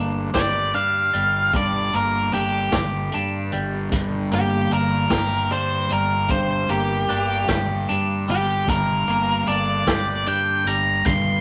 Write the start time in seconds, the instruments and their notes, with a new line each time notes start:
Already playing: fingered electric bass G1, clean electric guitar G2 A#3 D4, synth drone G2 D3
0.34 fingered electric bass G1, clean electric guitar G4, lead electric guitar D5, kick, snare, closed hi-hat
0.74 fingered electric bass G2, clean electric guitar D4, lead electric guitar F5, closed hi-hat
1.14 fingered electric bass G1, clean electric guitar G3, closed hi-hat
1.53 fingered electric bass G1, clean electric guitar G2, lead electric guitar D5, kick, closed hi-hat
1.93 fingered electric bass G1, clean electric guitar A#3, lead electric guitar A#4, closed hi-hat
2.33 fingered electric bass G1, clean electric guitar D4, lead electric guitar G4, closed hi-hat
2.72 fingered electric bass G1, clean electric guitar G4, kick, snare, closed hi-hat
3.12 fingered electric bass G2, clean electric guitar D4, closed hi-hat
3.52 fingered electric bass G1, clean electric guitar G3, closed hi-hat
3.92 fingered electric bass G1, clean electric guitar G2, kick, closed hi-hat
4.32 fingered electric bass G1, clean electric guitar A#3, lead electric guitar G4, closed hi-hat
4.71 fingered electric bass G1, clean electric guitar D4, lead electric guitar A#4, closed hi-hat
5.10 fingered electric bass G1, clean electric guitar G4, kick, snare, closed hi-hat
5.50 fingered electric bass G2, clean electric guitar D4, lead electric guitar C5, closed hi-hat
5.89 fingered electric bass G1, clean electric guitar G3, lead electric guitar A#4, closed hi-hat
6.29 fingered electric bass G1, clean electric guitar G2, lead electric guitar C5, kick, closed hi-hat
6.69 fingered electric bass G1, clean electric guitar A#3, lead electric guitar G4, closed hi-hat
7.08 fingered electric bass G1, clean electric guitar D4, closed hi-hat
7.48 fingered electric bass G1, clean electric guitar G4, kick, snare, closed hi-hat
7.89 fingered electric bass G2, clean electric guitar D4, closed hi-hat
8.28 fingered electric bass G1, clean electric guitar G3, lead electric guitar G4, closed hi-hat
8.65 fingered electric bass G1, synth drone G2 D3, clean electric guitar G2, kick, closed hi-hat
8.70 lead electric guitar A#4
9.07 fingered electric bass G1, clean electric guitar A#3, closed hi-hat
9.47 fingered electric bass G1, clean electric guitar D4, lead electric guitar D5, closed hi-hat
9.87 fingered electric bass G1, clean electric guitar G4, kick, snare, closed hi-hat
10.26 fingered electric bass G2, clean electric guitar D4, lead electric guitar G5, closed hi-hat
10.65 fingered electric bass G1, clean electric guitar G3, lead electric guitar A#5, closed hi-hat
11.05 fingered electric bass G1, clean electric guitar G2, lead electric guitar C6, kick, closed hi-hat